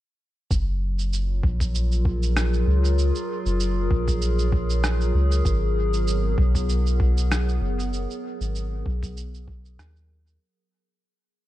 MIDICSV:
0, 0, Header, 1, 4, 480
1, 0, Start_track
1, 0, Tempo, 618557
1, 396, Time_signature, 4, 2, 24, 8
1, 8901, End_track
2, 0, Start_track
2, 0, Title_t, "Ambient pad"
2, 0, Program_c, 0, 92
2, 392, Note_on_c, 0, 54, 73
2, 809, Note_on_c, 0, 65, 74
2, 1037, Note_on_c, 0, 70, 69
2, 1416, Note_on_c, 0, 68, 87
2, 4467, Note_on_c, 0, 59, 75
2, 5559, Note_off_c, 0, 65, 0
2, 8073, Note_off_c, 0, 68, 0
2, 8074, Note_off_c, 0, 54, 0
2, 8075, Note_off_c, 0, 59, 0
2, 8076, Note_off_c, 0, 70, 0
2, 8901, End_track
3, 0, Start_track
3, 0, Title_t, "Sub bass"
3, 0, Program_c, 1, 38
3, 391, Note_on_c, 1, 30, 96
3, 1093, Note_off_c, 1, 30, 0
3, 1112, Note_on_c, 1, 34, 89
3, 2053, Note_off_c, 1, 34, 0
3, 2072, Note_on_c, 1, 37, 92
3, 2420, Note_off_c, 1, 37, 0
3, 2682, Note_on_c, 1, 30, 96
3, 3012, Note_off_c, 1, 30, 0
3, 3030, Note_on_c, 1, 34, 92
3, 3972, Note_off_c, 1, 34, 0
3, 3991, Note_on_c, 1, 37, 91
3, 4207, Note_off_c, 1, 37, 0
3, 4229, Note_on_c, 1, 32, 97
3, 4932, Note_off_c, 1, 32, 0
3, 4950, Note_on_c, 1, 35, 93
3, 5892, Note_off_c, 1, 35, 0
3, 5906, Note_on_c, 1, 30, 92
3, 6257, Note_off_c, 1, 30, 0
3, 6522, Note_on_c, 1, 32, 98
3, 6852, Note_off_c, 1, 32, 0
3, 6872, Note_on_c, 1, 35, 93
3, 7587, Note_off_c, 1, 35, 0
3, 7592, Note_on_c, 1, 39, 89
3, 8053, Note_off_c, 1, 39, 0
3, 8901, End_track
4, 0, Start_track
4, 0, Title_t, "Drums"
4, 393, Note_on_c, 9, 36, 107
4, 396, Note_on_c, 9, 82, 50
4, 471, Note_off_c, 9, 36, 0
4, 474, Note_off_c, 9, 82, 0
4, 767, Note_on_c, 9, 82, 42
4, 845, Note_off_c, 9, 82, 0
4, 877, Note_on_c, 9, 82, 48
4, 955, Note_off_c, 9, 82, 0
4, 1113, Note_on_c, 9, 36, 91
4, 1191, Note_off_c, 9, 36, 0
4, 1244, Note_on_c, 9, 36, 56
4, 1249, Note_on_c, 9, 82, 39
4, 1322, Note_off_c, 9, 36, 0
4, 1326, Note_off_c, 9, 82, 0
4, 1357, Note_on_c, 9, 82, 50
4, 1435, Note_off_c, 9, 82, 0
4, 1488, Note_on_c, 9, 82, 28
4, 1566, Note_off_c, 9, 82, 0
4, 1592, Note_on_c, 9, 36, 93
4, 1670, Note_off_c, 9, 36, 0
4, 1728, Note_on_c, 9, 82, 40
4, 1806, Note_off_c, 9, 82, 0
4, 1836, Note_on_c, 9, 37, 86
4, 1836, Note_on_c, 9, 82, 52
4, 1914, Note_off_c, 9, 37, 0
4, 1914, Note_off_c, 9, 82, 0
4, 1967, Note_on_c, 9, 82, 29
4, 2045, Note_off_c, 9, 82, 0
4, 2209, Note_on_c, 9, 82, 42
4, 2286, Note_off_c, 9, 82, 0
4, 2316, Note_on_c, 9, 82, 51
4, 2394, Note_off_c, 9, 82, 0
4, 2447, Note_on_c, 9, 82, 30
4, 2525, Note_off_c, 9, 82, 0
4, 2686, Note_on_c, 9, 82, 41
4, 2764, Note_off_c, 9, 82, 0
4, 2795, Note_on_c, 9, 82, 49
4, 2872, Note_off_c, 9, 82, 0
4, 3031, Note_on_c, 9, 36, 97
4, 3109, Note_off_c, 9, 36, 0
4, 3163, Note_on_c, 9, 36, 59
4, 3166, Note_on_c, 9, 82, 42
4, 3241, Note_off_c, 9, 36, 0
4, 3243, Note_off_c, 9, 82, 0
4, 3273, Note_on_c, 9, 82, 51
4, 3351, Note_off_c, 9, 82, 0
4, 3405, Note_on_c, 9, 82, 30
4, 3483, Note_off_c, 9, 82, 0
4, 3511, Note_on_c, 9, 36, 96
4, 3589, Note_off_c, 9, 36, 0
4, 3646, Note_on_c, 9, 82, 41
4, 3723, Note_off_c, 9, 82, 0
4, 3754, Note_on_c, 9, 37, 94
4, 3754, Note_on_c, 9, 82, 51
4, 3831, Note_off_c, 9, 37, 0
4, 3831, Note_off_c, 9, 82, 0
4, 3887, Note_on_c, 9, 82, 28
4, 3964, Note_off_c, 9, 82, 0
4, 4125, Note_on_c, 9, 82, 42
4, 4203, Note_off_c, 9, 82, 0
4, 4230, Note_on_c, 9, 36, 118
4, 4234, Note_on_c, 9, 82, 52
4, 4308, Note_off_c, 9, 36, 0
4, 4311, Note_off_c, 9, 82, 0
4, 4605, Note_on_c, 9, 82, 40
4, 4682, Note_off_c, 9, 82, 0
4, 4714, Note_on_c, 9, 82, 48
4, 4792, Note_off_c, 9, 82, 0
4, 4950, Note_on_c, 9, 36, 98
4, 5028, Note_off_c, 9, 36, 0
4, 5082, Note_on_c, 9, 36, 60
4, 5085, Note_on_c, 9, 82, 40
4, 5160, Note_off_c, 9, 36, 0
4, 5162, Note_off_c, 9, 82, 0
4, 5193, Note_on_c, 9, 82, 49
4, 5271, Note_off_c, 9, 82, 0
4, 5326, Note_on_c, 9, 82, 29
4, 5404, Note_off_c, 9, 82, 0
4, 5431, Note_on_c, 9, 36, 104
4, 5509, Note_off_c, 9, 36, 0
4, 5568, Note_on_c, 9, 82, 41
4, 5645, Note_off_c, 9, 82, 0
4, 5677, Note_on_c, 9, 37, 96
4, 5677, Note_on_c, 9, 82, 52
4, 5754, Note_off_c, 9, 37, 0
4, 5754, Note_off_c, 9, 82, 0
4, 5810, Note_on_c, 9, 82, 28
4, 5888, Note_off_c, 9, 82, 0
4, 6049, Note_on_c, 9, 82, 41
4, 6126, Note_off_c, 9, 82, 0
4, 6155, Note_on_c, 9, 82, 49
4, 6233, Note_off_c, 9, 82, 0
4, 6289, Note_on_c, 9, 82, 28
4, 6366, Note_off_c, 9, 82, 0
4, 6527, Note_on_c, 9, 82, 39
4, 6605, Note_off_c, 9, 82, 0
4, 6637, Note_on_c, 9, 82, 49
4, 6714, Note_off_c, 9, 82, 0
4, 6873, Note_on_c, 9, 36, 99
4, 6951, Note_off_c, 9, 36, 0
4, 7005, Note_on_c, 9, 36, 60
4, 7008, Note_on_c, 9, 82, 40
4, 7082, Note_off_c, 9, 36, 0
4, 7085, Note_off_c, 9, 82, 0
4, 7117, Note_on_c, 9, 82, 51
4, 7195, Note_off_c, 9, 82, 0
4, 7251, Note_on_c, 9, 82, 29
4, 7329, Note_off_c, 9, 82, 0
4, 7354, Note_on_c, 9, 36, 100
4, 7431, Note_off_c, 9, 36, 0
4, 7491, Note_on_c, 9, 82, 38
4, 7568, Note_off_c, 9, 82, 0
4, 7599, Note_on_c, 9, 37, 92
4, 7599, Note_on_c, 9, 82, 49
4, 7677, Note_off_c, 9, 37, 0
4, 7677, Note_off_c, 9, 82, 0
4, 7731, Note_on_c, 9, 82, 28
4, 7808, Note_off_c, 9, 82, 0
4, 7969, Note_on_c, 9, 82, 41
4, 8047, Note_off_c, 9, 82, 0
4, 8901, End_track
0, 0, End_of_file